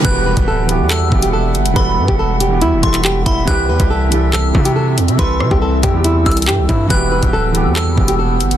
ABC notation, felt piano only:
X:1
M:4/4
L:1/16
Q:1/4=140
K:Em
V:1 name="Felt piano"
[E,G,B,FG]4- [E,G,B,FG] z [E,G,B,FG]3 z [E,G,B,FG]4- [E,G,B,FG] z | [E,G,B,FA]4- [E,G,B,FA] z2 [E,G,B,FG]2 z [E,G,B,FA]4- [E,G,B,FA] z | [C,E,G,EG]4- [C,E,G,EG] z [C,E,G,EA]3 z [C,E,G,EF]4- [C,E,G,EF] z | [C,E,G,EA]4- [C,E,G,EA] z2 [C,E,G,EG]2 z [C,E,G,EA]4- [C,E,G,EA] z |
[E,G,B,FG]4- [E,G,B,FG] z [E,G,B,FG]3 z [E,G,B,FG]4- [E,G,B,FG] z |]